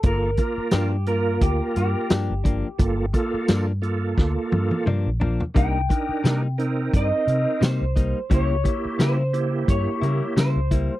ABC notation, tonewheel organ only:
X:1
M:4/4
L:1/16
Q:"Swing 16ths" 1/4=87
K:Gm
V:1 name="Tonewheel organ"
[B,FA]2 [B,FB]3 z [B,FB]6 z4 | [B,FA]2 [B,FA]3 z [B,FA]6 z4 | [DEB]2 [DEB]3 z [CEB]6 z4 | [^A,=EG]2 [A,EG]3 z [A,EG]6 z4 |]